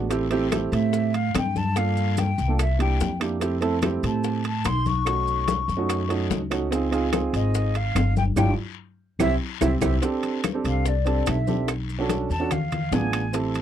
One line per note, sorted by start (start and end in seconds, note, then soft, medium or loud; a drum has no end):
0.00 0.67 A1 medium
0.09 0.25 A3 medium
0.09 0.25 C4 medium
0.09 0.25 E4 medium
0.09 0.25 G4 loud
0.09 high bongo medium
0.09 high conga soft
0.09 high timbale medium
0.09 long guiro medium
0.09 maracas medium
0.30 0.45 A3 medium
0.30 0.46 C4 medium
0.30 0.46 E4 medium
0.30 0.46 G4 loud
0.30 high conga soft
0.30 high timbale medium
0.30 maracas soft
0.50 1.09 A3 medium
0.50 1.10 C4 medium
0.50 1.10 E4 medium
0.50 1.10 G4 medium
0.50 high bongo medium
0.50 high conga medium
0.50 high timbale loud
0.50 short guiro medium
0.50 claves medium
0.50 maracas medium
0.72 1.30 A2 loud
0.72 1.16 E5 medium
0.72 high bongo soft
0.72 high conga soft
0.72 high timbale medium
0.72 short guiro medium
0.72 maracas soft
0.93 high bongo medium
0.93 high conga soft
0.93 long guiro medium
0.93 maracas medium
1.14 1.35 F5 medium
1.14 high bongo soft
1.14 high conga soft
1.14 high timbale medium
1.14 maracas soft
1.34 2.32 G2 loud
1.34 1.58 G5 medium
1.34 high bongo medium
1.34 low bongo medium
1.34 high conga medium
1.34 high timbale loud
1.34 low timbale medium
1.34 short guiro medium
1.34 claves medium
1.34 maracas medium
1.56 1.78 A5 medium
1.56 high bongo soft
1.56 high conga medium
1.56 short guiro medium
1.56 maracas soft
1.76 2.27 A#3 medium
1.76 2.27 D4 medium
1.76 2.27 F4 medium
1.76 2.28 A4 medium
1.76 2.20 F5 medium
1.76 high bongo medium
1.76 high conga soft
1.76 high timbale medium
1.76 long guiro medium
1.76 claves medium
1.76 maracas medium
1.97 high conga soft
1.97 maracas soft
2.17 2.59 G5 medium
2.17 high bongo medium
2.17 high conga medium
2.17 high timbale medium
2.17 short guiro medium
2.17 maracas medium
2.38 2.96 C2 loud
2.38 high bongo soft
2.38 high conga soft
2.38 short guiro medium
2.38 maracas soft
2.48 2.59 A#3 medium
2.48 2.59 D4 medium
2.48 2.59 F4 medium
2.48 2.59 A4 medium
2.59 2.79 E5 medium
2.59 high bongo medium
2.59 high conga soft
2.59 high timbale medium
2.59 long guiro medium
2.59 claves medium
2.59 maracas medium
2.78 3.08 A#3 medium
2.78 3.08 D4 medium
2.78 3.08 E4 medium
2.78 3.09 G4 medium
2.78 3.18 G5 medium
2.78 high bongo soft
2.78 high conga soft
2.78 high timbale medium
2.78 maracas soft
3.00 3.97 F2 medium
3.00 high bongo medium
3.00 low bongo medium
3.00 high conga medium
3.00 short guiro medium
3.00 maracas medium
3.20 3.35 A#3 medium
3.20 3.35 D4 medium
3.20 3.36 E4 medium
3.20 3.36 G4 medium
3.20 high bongo soft
3.20 high conga soft
3.20 high timbale medium
3.20 short guiro medium
3.20 claves medium
3.20 maracas soft
3.40 3.55 A3 medium
3.40 3.56 C4 medium
3.40 3.56 E4 medium
3.40 3.56 G4 medium
3.40 high bongo medium
3.40 high conga soft
3.40 high timbale medium
3.40 long guiro medium
3.40 maracas medium
3.61 3.76 A3 medium
3.61 3.76 C4 medium
3.61 3.77 E4 medium
3.61 3.77 A4 loud
3.61 high conga soft
3.61 high timbale medium
3.61 maracas soft
3.82 4.40 A3 medium
3.82 4.40 C4 medium
3.82 4.41 E4 medium
3.82 4.41 G4 medium
3.82 high bongo medium
3.82 high conga loud
3.82 high timbale medium
3.82 short guiro medium
3.82 claves medium
3.82 maracas medium
4.03 4.61 A2 loud
4.03 4.43 A5 medium
4.03 high bongo soft
4.03 high conga soft
4.03 high timbale medium
4.03 short guiro medium
4.03 maracas soft
4.24 high bongo medium
4.24 high conga soft
4.24 long guiro medium
4.24 maracas medium
4.44 4.67 A5 medium
4.44 high bongo soft
4.44 high conga soft
4.44 high timbale medium
4.44 maracas soft
4.65 5.63 B1 medium
4.65 4.88 C6 loud
4.65 high bongo medium
4.65 low bongo medium
4.65 high conga medium
4.65 high timbale medium
4.65 short guiro medium
4.65 claves medium
4.65 maracas medium
4.86 6.11 C#6 loud
4.86 high bongo soft
4.86 high conga medium
4.86 short guiro medium
4.86 maracas soft
5.05 5.57 A3 medium
5.05 5.57 C#4 medium
5.05 5.57 D#4 medium
5.05 5.58 F#4 medium
5.05 high bongo medium
5.05 high timbale medium
5.05 long guiro medium
5.05 claves medium
5.05 maracas medium
5.28 high conga soft
5.28 maracas soft
5.48 high bongo medium
5.48 high conga loud
5.48 high timbale medium
5.48 short guiro medium
5.48 maracas medium
5.68 6.26 F#2 medium
5.68 high bongo soft
5.68 high conga soft
5.68 short guiro medium
5.68 maracas soft
5.77 6.00 A3 medium
5.77 6.00 C#4 medium
5.77 6.00 D#4 medium
5.77 6.00 F#4 medium
5.89 high bongo medium
5.89 high conga soft
5.89 high timbale medium
5.89 long guiro medium
5.89 claves medium
5.89 maracas medium
6.08 6.38 A3 medium
6.08 6.39 C#4 medium
6.08 6.39 D#4 medium
6.08 6.39 F#4 medium
6.08 high bongo soft
6.08 high conga soft
6.08 high timbale medium
6.08 maracas soft
6.30 7.28 C#2 medium
6.30 high bongo medium
6.30 low bongo medium
6.30 high conga medium
6.30 short guiro medium
6.30 maracas medium
6.50 6.65 A3 medium
6.50 6.66 C#4 medium
6.50 6.66 D#4 medium
6.50 6.66 F#4 medium
6.50 high bongo soft
6.50 high conga soft
6.50 high timbale medium
6.50 short guiro medium
6.50 claves medium
6.50 maracas soft
6.71 6.86 C4 medium
6.71 6.86 D#4 medium
6.71 6.87 F4 medium
6.71 6.87 G#4 medium
6.71 high bongo medium
6.71 high conga soft
6.71 high timbale medium
6.71 long guiro medium
6.71 maracas medium
6.91 7.06 C4 medium
6.91 7.07 D#4 medium
6.91 7.07 F4 loud
6.91 7.07 G#4 loud
6.91 high conga soft
6.91 high timbale medium
6.91 maracas soft
7.12 7.71 C4 medium
7.12 7.71 D#4 medium
7.12 7.71 F4 medium
7.12 7.72 G#4 medium
7.12 high bongo medium
7.12 high conga medium
7.12 high timbale medium
7.12 short guiro medium
7.12 claves medium
7.12 maracas medium
7.33 7.92 G#1 medium
7.33 7.77 D#5 medium
7.33 high bongo soft
7.33 high conga soft
7.33 high timbale medium
7.33 short guiro medium
7.33 maracas soft
7.55 high bongo medium
7.55 high conga soft
7.55 long guiro medium
7.55 maracas medium
7.75 8.16 F5 loud
7.75 high bongo soft
7.75 high conga soft
7.75 high timbale medium
7.75 maracas soft
7.95 8.34 G1 medium
7.95 high bongo medium
7.95 low bongo medium
7.95 high conga medium
7.95 high timbale medium
7.95 low timbale medium
7.95 short guiro medium
7.95 claves medium
7.95 maracas medium
8.16 8.23 G5 medium
8.16 high bongo soft
8.16 high conga medium
8.16 short guiro medium
8.16 maracas soft
8.36 8.52 G1 loud
8.36 8.50 D4 medium
8.36 8.50 F4 medium
8.36 8.50 G4 medium
8.36 8.51 G5 loud
8.36 high bongo medium
8.36 high conga loud
8.36 high timbale medium
8.36 long guiro loud
8.36 claves loud
8.36 maracas medium
9.19 9.35 C2 medium
9.19 9.33 C4 medium
9.19 9.33 E4 loud
9.19 9.33 G4 medium
9.19 9.34 E5 medium
9.19 high bongo medium
9.19 high conga loud
9.19 high timbale loud
9.19 long guiro loud
9.19 claves loud
9.19 maracas medium
9.61 9.77 C2 medium
9.61 9.74 C4 loud
9.61 9.75 E4 medium
9.61 9.75 G4 medium
9.61 9.74 E5 medium
9.61 high bongo loud
9.61 high conga medium
9.61 high timbale medium
9.61 long guiro loud
9.61 claves loud
9.61 maracas medium
9.81 9.97 C2 medium
9.81 9.95 C4 medium
9.81 9.95 E4 medium
9.81 9.95 G4 medium
9.81 9.96 E5 medium
9.81 high bongo medium
9.81 high conga medium
9.81 high timbale loud
9.81 long guiro medium
9.81 claves loud
9.81 maracas medium
10.01 10.39 C4 medium
10.01 10.39 D4 medium
10.01 10.39 G4 medium
10.01 10.39 A4 medium
10.01 high bongo medium
10.01 high conga soft
10.01 high timbale medium
10.01 long guiro medium
10.01 maracas medium
10.23 high conga soft
10.23 high timbale medium
10.23 maracas soft
10.44 high bongo medium
10.44 high conga medium
10.44 high timbale medium
10.44 short guiro medium
10.44 claves medium
10.44 maracas medium
10.54 10.90 C4 medium
10.54 10.91 D4 medium
10.54 10.91 G4 medium
10.54 10.91 A4 medium
10.64 11.23 C2 medium
10.64 10.89 F5 medium
10.64 high bongo soft
10.64 high conga soft
10.64 high timbale medium
10.64 short guiro medium
10.64 maracas soft
10.85 11.30 D5 medium
10.85 high bongo medium
10.85 high conga soft
10.85 long guiro medium
10.85 maracas medium
11.05 11.35 C4 medium
11.05 11.35 D4 medium
11.05 11.35 G4 medium
11.05 11.36 A4 medium
11.05 high bongo soft
11.05 high conga soft
11.05 high timbale medium
11.05 maracas soft
11.26 12.25 B1 medium
11.26 11.69 E5 medium
11.26 high bongo medium
11.26 low bongo medium
11.26 high conga medium
11.26 high timbale loud
11.26 short guiro medium
11.26 claves medium
11.26 maracas medium
11.47 11.68 C4 medium
11.47 11.68 D4 medium
11.47 11.69 G4 medium
11.47 11.69 A4 medium
11.47 high bongo soft
11.47 high conga medium
11.47 short guiro medium
11.47 maracas soft
11.68 high bongo medium
11.68 high conga soft
11.68 high timbale medium
11.68 long guiro medium
11.68 claves medium
11.68 maracas medium
11.89 high conga soft
11.89 maracas soft
11.99 12.28 C#4 medium
11.99 12.29 D4 medium
11.99 12.29 F#4 medium
11.99 12.29 A4 medium
12.09 high bongo medium
12.09 high conga medium
12.09 high timbale medium
12.09 short guiro medium
12.09 maracas medium
12.30 12.88 E2 medium
12.30 12.53 A5 medium
12.30 high bongo soft
12.30 high conga soft
12.30 short guiro medium
12.30 maracas soft
12.40 12.51 C#4 medium
12.40 12.51 D4 medium
12.40 12.51 F#4 medium
12.40 12.51 A4 medium
12.51 12.94 F5 medium
12.51 high bongo medium
12.51 high conga soft
12.51 low conga medium
12.51 high timbale medium
12.51 long guiro medium
12.51 claves medium
12.51 maracas medium
12.72 high bongo soft
12.72 high conga soft
12.72 low conga medium
12.72 high timbale medium
12.72 maracas soft
12.91 13.62 A1 medium
12.91 13.21 B3 medium
12.91 13.22 D4 medium
12.91 13.22 F4 medium
12.91 13.22 G#4 medium
12.91 13.34 G#5 medium
12.91 high bongo medium
12.91 low bongo medium
12.91 high conga medium
12.91 low timbale medium
12.91 short guiro medium
12.91 maracas medium
13.13 high bongo soft
13.13 high conga soft
13.13 high timbale loud
13.13 short guiro medium
13.13 claves medium
13.13 maracas soft
13.33 13.62 C4 medium
13.33 13.62 E4 medium
13.33 13.62 G4 medium
13.33 13.62 A4 medium
13.33 high bongo medium
13.33 high conga soft
13.33 high timbale medium
13.33 long guiro medium
13.33 maracas medium
13.55 high conga soft
13.55 high timbale medium
13.55 maracas soft